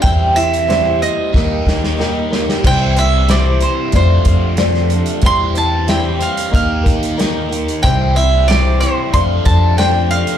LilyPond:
<<
  \new Staff \with { instrumentName = "Mandolin" } { \time 4/4 \key c \major \tempo 4 = 92 g''8 e''4 ees''2 r8 | g''8 e''8 d''8 c''8 c''4 r4 | c'''8 a''8 g''8 f''8 f''4 r4 | g''8 e''8 d''8 c''8 c'''8 a''8 g''8 f''8 | }
  \new Staff \with { instrumentName = "Twelve-string acoustic guitar" } { \time 4/4 \key c \major <e g c' e' c''>8 <c' e' c''>8 <e g c' e' c''>8 <c' e' c''>8 <g ees' g' bes'>8 <ees' g' bes'>8 <ees g ees' g' bes'>8 <ees' g' bes'>8 | <c e g c' e' c''>8 <g c' e' c''>8 <c e g c' e' c''>8 <g c' e' c''>8 <a d' a' c''>8 <d' a' c''>8 <f a d' a' c''>8 <d' a' c''>8 | <e g c' e' c''>8 <c' e' c''>8 <e g c' e' c''>8 <c' c''>8 <bes ees' g' bes'>8 <ees' g' bes'>8 <ees bes ees' g' bes'>8 <ees' g' bes'>8 | <c e g c' e' c''>8 <g c' e' c''>8 <c e g c' e' c''>8 <g c' e' c''>8 <a d' a' c''>8 <d' a' c''>8 <f a d' a' c''>8 <d' a' c''>8 | }
  \new Staff \with { instrumentName = "Overdriven electric guitar" } { \time 4/4 \key c \major <e g c' g'>2 <ees bes ees' g'>2 | <c e g c' e'>2 <f, c f a c' f'>2 | <e g c' g'>2 <ees bes ees' g'>2 | <c e g c' e'>2 <f, c f a c' f'>2 | }
  \new Staff \with { instrumentName = "Upright bass" } { \clef bass \time 4/4 \key c \major e,2 ees,8 ees,4. | c,2 f,8 f,4. | e,2 ees,8 ees,4. | c,2 f,8 f,4. | }
  \new DrumStaff \with { instrumentName = "Drums" } \drummode { \time 4/4 <hh bd>8 hh16 hh16 <hh sn>8 hh8 <bd sn>8 sn16 sn16 sn8 sn16 sn16 | <cymc bd>8 hh8 <hh sn>8 hh8 <hh bd>8 <hh bd>8 <hh sn>16 sn16 hh16 hh16 | <hh bd>8 hh8 <hh sn>8 hh16 hh16 <hh bd>8 <hh bd>16 hh16 <hh sn>8 hh16 hh16 | <hh bd>8 hh8 <hh sn>8 hh8 <hh bd>8 <hh bd>8 <hh sn>8 hh16 hh16 | }
>>